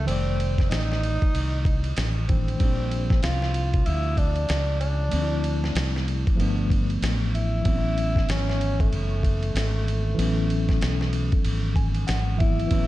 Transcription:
0.05 0.67 F1 medium
0.05 2.23 D#3 medium
0.05 2.24 G3 medium
0.05 2.25 A3 medium
0.05 0.71 C4 loud
0.05 ride medium
0.11 2.26 D5 medium
0.40 ride medium
0.58 kick medium
0.58 snare soft
0.58 ride soft
0.70 1.18 A1 medium
0.70 2.02 D#4 loud
0.70 snare medium
0.70 hi-hat pedal soft
0.70 ride medium
0.92 snare soft
1.03 ride soft
1.22 kick medium
1.22 ride soft
1.34 1.94 C2 medium
1.34 ride medium
1.65 kick medium
1.65 ride medium
1.84 ride soft
1.97 2.57 A1 medium
1.97 snare medium
1.97 hi-hat pedal soft
1.97 ride medium
2.27 2.59 D#3 soft
2.27 2.59 G3 soft
2.27 2.61 A3 soft
2.27 3.19 C4 medium
2.27 2.61 D4 soft
2.27 kick medium
2.27 ride medium
2.48 ride soft
2.58 3.20 A#1 medium
2.58 5.08 F3 medium
2.58 5.09 G3 medium
2.58 kick loud
2.58 ride medium
2.63 5.10 C4 medium
2.63 5.11 D4 medium
2.91 ride medium
3.10 kick medium
3.10 snare soft
3.23 3.84 C2 medium
3.23 3.87 F4 loud
3.23 snare loud
3.23 hi-hat pedal soft
3.23 ride medium
3.42 snare soft
3.54 ride medium
3.74 kick medium
3.74 ride soft
3.86 4.47 D2 medium
3.86 4.20 E4 loud
3.86 ride medium
4.17 4.80 D4 loud
4.17 kick medium
4.17 ride medium
4.36 ride soft
4.49 5.09 C#2 medium
4.49 snare medium
4.49 hi-hat pedal soft
4.49 ride medium
4.80 6.03 D4 loud
4.80 ride soft
5.09 6.34 F3 medium
5.09 6.36 A3 medium
5.09 ride medium
5.13 5.73 D2 medium
5.13 6.37 C4 medium
5.13 5.22 D4 soft
5.22 6.41 E4 medium
5.44 ride medium
5.64 snare soft
5.75 6.23 C2 medium
5.75 snare loud
5.75 hi-hat pedal soft
5.75 ride medium
5.96 snare soft
6.08 ride soft
6.27 kick medium
6.27 ride soft
6.35 6.99 G1 medium
6.35 7.61 F3 medium
6.35 7.62 A3 medium
6.40 7.63 B3 medium
6.40 7.64 D4 medium
6.40 ride medium
6.70 kick medium
6.70 ride medium
6.90 ride soft
7.02 7.62 A1 medium
7.02 snare medium
7.02 hi-hat pedal medium
7.02 ride medium
7.35 8.32 E4 loud
7.35 ride soft
7.61 10.12 E3 medium
7.61 10.13 F#3 medium
7.61 kick loud
7.61 ride medium
7.66 8.26 A1 medium
7.66 10.14 B3 medium
7.66 7.74 C4 medium
7.75 10.19 C#4 medium
7.98 ride medium
8.16 kick medium
8.16 snare soft
8.29 8.89 G#1 medium
8.29 8.82 C#4 loud
8.29 snare loud
8.29 hi-hat pedal medium
8.29 ride medium
8.49 snare soft
8.61 ride medium
8.80 12.08 A3 medium
8.80 kick medium
8.80 ride soft
8.92 9.52 F#1 medium
8.92 ride medium
9.23 kick medium
9.23 ride medium
9.43 ride soft
9.54 10.14 G#1 medium
9.54 snare medium
9.54 hi-hat pedal medium
9.54 ride medium
9.88 ride soft
10.14 10.78 A1 medium
10.14 12.33 E3 medium
10.14 12.34 F#3 medium
10.19 12.35 B3 medium
10.19 12.36 C#4 medium
10.19 ride medium
10.50 ride soft
10.69 kick medium
10.69 snare soft
10.69 ride soft
10.81 11.29 B1 medium
10.81 snare medium
10.81 hi-hat pedal soft
10.81 ride medium
11.01 snare soft
11.13 ride soft
11.32 kick medium
11.32 ride soft
11.45 12.05 G#1 medium
11.45 ride medium
11.76 12.05 G#5 medium
11.76 kick medium
11.76 ride medium
11.95 ride soft
12.07 12.68 G#1 medium
12.07 12.37 F#5 medium
12.07 snare medium
12.07 hi-hat pedal medium
12.07 ride medium
12.37 12.66 E3 medium
12.37 12.68 F#3 soft
12.37 12.70 B3 soft
12.37 12.71 E4 medium
12.37 12.68 E5 medium
12.37 kick medium
12.37 ride soft
12.41 12.87 E4 medium
12.60 ride soft
12.67 12.87 A1 medium
12.67 12.87 E3 medium
12.67 12.87 F#3 medium
12.67 kick loud
12.67 ride medium
12.71 12.87 B3 medium
12.71 12.87 C#4 medium

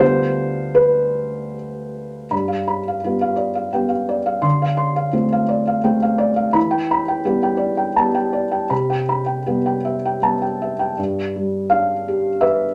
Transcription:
0.00 2.26 D2 medium
0.00 2.26 G3 soft
0.00 2.27 B3 medium
0.00 2.28 F4 medium
0.00 0.77 C5 loud
0.75 1.54 B4 medium
2.31 3.01 G2 soft
2.31 2.60 B5 soft
2.48 2.78 F5 soft
2.68 2.96 B5 soft
2.88 3.15 F5 soft
3.04 3.71 G3 soft
3.04 3.71 B3 soft
3.04 3.32 F4 soft
3.21 3.49 F5 soft
3.36 3.66 D5 soft
3.55 3.84 F5 soft
3.73 4.40 G3 soft
3.73 4.40 B3 soft
3.73 3.91 G5 soft
3.89 4.18 F5 soft
4.09 4.37 D5 soft
4.26 4.44 F5 soft
4.42 5.12 D3 medium
4.42 4.71 C6 medium
4.62 4.91 F5 soft
4.77 5.07 C6 medium
4.96 5.25 F5 soft
5.13 5.81 A3 soft
5.13 5.81 C4 medium
5.13 5.43 F4 soft
5.32 5.61 F5 medium
5.49 5.78 D5 soft
5.67 5.96 F5 medium
5.84 6.51 A3 soft
5.84 6.51 C4 soft
5.84 6.02 G5 soft
6.02 6.31 F5 medium
6.18 6.47 D5 medium
6.36 6.55 F5 medium
6.53 7.22 E3 medium
6.53 6.82 B5 medium
6.71 7.00 G5 medium
6.91 7.18 B5 medium
7.08 7.36 G5 soft
7.25 7.93 G3 medium
7.25 7.93 B3 soft
7.25 7.53 G4 medium
7.43 7.71 G5 medium
7.57 7.88 D5 soft
7.77 8.07 G5 soft
7.96 8.67 G3 soft
7.96 8.67 B3 soft
7.96 8.15 A5 soft
8.15 8.45 G5 soft
8.33 8.63 D5 soft
8.51 8.71 G5 soft
8.70 9.44 C3 soft
8.70 9.01 B5 soft
8.90 9.20 G5 soft
9.09 9.39 B5 soft
9.26 9.57 G5 soft
9.46 10.18 G3 soft
9.46 10.18 B3 soft
9.46 9.77 G4 soft
9.66 9.96 G5 soft
9.85 10.15 E5 soft
10.05 10.35 G5 soft
10.22 10.94 G3 soft
10.22 10.94 B3 soft
10.22 10.42 A5 soft
10.42 10.72 G5 soft
10.62 10.91 E5 soft
10.79 10.98 G5 soft
10.98 12.74 G2 medium
11.36 11.93 G3 soft
11.70 12.28 D4 medium
11.70 12.42 F5 medium
12.08 12.65 G4 soft
12.41 12.74 B4 soft
12.41 12.74 E5 medium

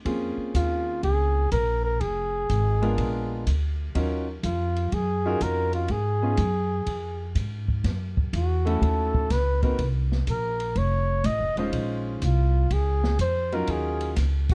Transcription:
0.05 0.36 F2 medium
0.05 1.42 A#3 medium
0.05 1.42 C4 soft
0.05 1.42 C#4 medium
0.05 1.42 F4 medium
0.05 1.42 G#4 medium
0.05 kick soft
0.05 ride medium
0.37 muted upright bass stroke soft
0.54 1.01 D#2 medium
0.54 1.00 F4 medium
0.54 kick soft
0.54 hi-hat pedal medium
0.54 ride medium
1.03 1.50 C#2 medium
1.03 1.49 G#4 loud
1.03 kick soft
1.03 ride medium
1.52 1.99 A#1 loud
1.52 1.82 A#4 loud
1.52 kick soft
1.52 hi-hat pedal soft
1.52 ride medium
1.84 2.02 A#4 medium
2.00 2.48 F1 medium
2.00 3.46 G#4 medium
2.00 kick soft
2.00 ride medium
2.49 2.96 G#1 medium
2.49 kick soft
2.49 hi-hat pedal medium
2.49 ride medium
2.82 3.43 G#3 medium
2.82 3.43 B3 medium
2.82 3.43 D4 medium
2.82 3.43 F4 medium
2.82 3.44 A#4 medium
2.82 ride soft
2.98 3.45 A#1 medium
2.98 kick soft
2.98 ride medium
3.47 3.94 D2 medium
3.47 kick soft
3.47 hi-hat pedal medium
3.47 ride medium
3.95 4.42 D#2 medium
3.95 4.25 F#3 medium
3.95 4.25 C#4 medium
3.95 4.25 D#4 medium
3.95 4.25 F4 medium
3.95 4.25 A#4 medium
3.95 kick soft
3.95 ride medium
4.43 4.91 F2 medium
4.43 4.95 F4 medium
4.43 kick soft
4.43 hi-hat pedal medium
4.43 ride medium
4.76 ride soft
4.92 5.39 F#2 medium
4.92 5.44 G#4 loud
4.92 kick soft
4.92 ride medium
5.26 5.87 C#4 medium
5.26 5.87 D#4 medium
5.26 5.87 F4 medium
5.26 5.87 F#4 medium
5.26 5.87 A#4 medium
5.40 5.88 F2 medium
5.40 5.74 A#4 loud
5.40 kick soft
5.40 hi-hat pedal medium
5.40 ride medium
5.73 5.93 F4 medium
5.73 ride soft
5.88 6.37 G#2 medium
5.88 7.36 G#4 medium
5.88 kick soft
5.88 ride medium
6.22 6.37 B3 medium
6.22 6.37 C#4 medium
6.22 6.37 D#4 soft
6.22 6.37 F4 medium
6.22 6.37 G#4 medium
6.37 6.85 F#2 medium
6.37 kick soft
6.37 hi-hat pedal medium
6.37 ride medium
6.86 7.34 F2 medium
6.86 kick soft
6.86 ride medium
7.35 7.83 G#2 medium
7.35 kick soft
7.35 hi-hat pedal medium
7.35 ride medium
7.68 kick soft
7.84 8.31 F#2 medium
7.84 kick soft
7.84 snare soft
7.84 ride medium
8.17 kick medium
8.33 8.80 E2 medium
8.33 8.84 F#4 medium
8.33 kick soft
8.33 hi-hat pedal medium
8.33 ride medium
8.65 9.27 A3 medium
8.65 9.27 C#4 medium
8.65 9.27 E4 medium
8.65 9.27 F#4 medium
8.65 9.27 A4 medium
8.65 ride soft
8.81 9.29 D#2 medium
8.81 9.33 A4 medium
8.81 kick soft
8.81 ride medium
9.15 kick medium
9.30 9.77 C#2 medium
9.30 9.63 B4 loud
9.30 kick soft
9.30 snare soft
9.30 hi-hat pedal soft
9.30 ride medium
9.62 9.77 A#3 medium
9.62 9.77 C4 medium
9.62 9.77 D#4 medium
9.62 9.77 F#4 medium
9.62 9.77 A#4 medium
9.62 9.89 B4 medium
9.62 kick soft
9.62 ride soft
9.78 10.26 C2 medium
9.78 kick soft
9.78 ride medium
10.12 snare soft
10.27 10.75 A#1 medium
10.27 10.79 A#4 medium
10.27 kick soft
10.27 hi-hat pedal medium
10.27 ride medium
10.60 ride soft
10.76 11.23 F1 medium
10.76 11.27 C#5 loud
10.76 kick soft
10.76 ride soft
11.24 11.41 A1 medium
11.24 11.58 D#5 loud
11.24 kick soft
11.24 hi-hat pedal medium
11.24 ride medium
11.40 11.55 F1 medium
11.56 11.72 D#1 medium
11.56 12.19 G#3 medium
11.56 12.19 C#4 medium
11.56 12.19 D#4 medium
11.56 12.19 F4 medium
11.56 12.19 C5 medium
11.56 11.70 D#5 medium
11.56 ride soft
11.73 12.20 A#1 medium
11.73 kick soft
11.73 ride medium
12.22 12.69 C2 medium
12.22 12.74 F4 medium
12.22 kick soft
12.22 hi-hat pedal medium
12.22 ride medium
12.70 13.18 C#2 medium
12.70 13.20 G#4 medium
12.70 kick soft
12.70 ride medium
13.04 snare medium
13.19 13.66 F2 medium
13.19 13.56 C5 loud
13.19 kick soft
13.19 hi-hat pedal medium
13.19 ride medium
13.52 14.14 F#3 medium
13.52 14.14 C#4 medium
13.52 14.14 D#4 medium
13.52 14.14 F4 medium
13.52 14.14 A#4 medium
13.52 13.72 A#4 medium
13.52 ride soft
13.67 14.15 D#2 medium
13.67 14.18 G#4 medium
13.67 kick soft
13.67 ride medium
14.01 ride soft
14.16 14.54 C#2 medium
14.16 kick soft
14.16 snare soft
14.16 hi-hat pedal medium
14.16 ride medium
14.49 kick medium
14.49 crash medium

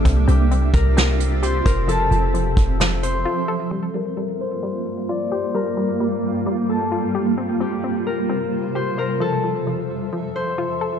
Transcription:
0.00 0.80 A4 medium
0.05 0.27 C2 loud
0.05 1.87 C3 loud
0.05 0.26 C4 medium
0.05 3.68 C4 medium
0.05 1.87 F4 medium
0.05 1.87 G4 loud
0.05 kick loud
0.05 closed hi-hat medium
0.28 0.72 C2 loud
0.28 0.50 C4 medium
0.28 2.64 G4 medium
0.28 closed hi-hat medium
0.51 0.96 C4 medium
0.51 closed hi-hat medium
0.74 1.62 C2 loud
0.74 1.65 A#4 medium
0.74 kick loud
0.74 closed hi-hat medium
0.97 1.88 C4 loud
0.97 snare loud
0.97 closed hi-hat medium
1.20 closed hi-hat medium
1.43 1.88 G4 medium
1.43 3.03 C5 medium
1.43 closed hi-hat medium
1.66 2.10 F1 loud
1.66 1.95 A#4 medium
1.66 1.88 C5 medium
1.66 kick loud
1.66 closed hi-hat medium
1.88 2.10 F3 loud
1.88 3.70 F3 medium
1.88 3.70 A4 loud
1.88 4.01 A4 loud
1.88 3.70 E5 medium
1.88 closed hi-hat medium
2.11 2.55 F1 loud
2.11 2.33 F3 medium
2.11 closed hi-hat medium
2.34 2.79 F3 medium
2.34 closed hi-hat medium
2.57 3.26 F1 loud
2.57 kick loud
2.57 closed hi-hat medium
2.80 3.72 F3 medium
2.80 snare loud
2.80 closed hi-hat medium
3.03 4.40 C5 medium
3.03 closed hi-hat medium
3.25 3.71 F4 medium
3.48 3.71 A4 medium
3.71 7.35 G2 medium
3.71 3.93 G3 medium
3.71 9.17 G3 medium
3.71 7.35 A#3 loud
3.71 9.17 F4 medium
3.94 4.16 G3 medium
3.94 5.55 A#4 medium
4.17 4.62 G3 medium
4.41 5.31 C5 medium
4.63 5.53 G3 medium
5.09 6.46 F4 medium
5.09 6.94 D5 medium
5.31 6.69 G4 medium
5.31 7.29 C5 medium
5.55 5.76 G3 loud
5.55 6.75 A#4 medium
5.77 5.99 G3 medium
6.00 6.45 G3 medium
6.46 7.38 G3 loud
6.69 8.13 A4 medium
6.92 7.38 F4 medium
7.15 7.38 G4 medium
7.38 9.19 C3 medium
7.38 7.59 C4 medium
7.38 9.19 C5 loud
7.60 7.83 C4 medium
7.60 9.96 G4 medium
7.84 8.28 C4 medium
8.07 8.98 A#4 medium
8.30 9.21 C4 medium
8.75 9.21 G4 medium
8.75 10.35 C5 medium
8.98 9.27 A#4 medium
8.98 9.21 C5 medium
9.20 10.99 F2 medium
9.20 9.43 F3 medium
9.20 10.99 F3 medium
9.20 10.99 A4 loud
9.20 10.99 E5 medium
9.44 9.66 F3 medium
9.67 10.12 F3 medium
10.13 10.99 F3 medium
10.36 10.99 C5 medium
10.58 10.99 F4 medium
10.81 10.99 A4 medium

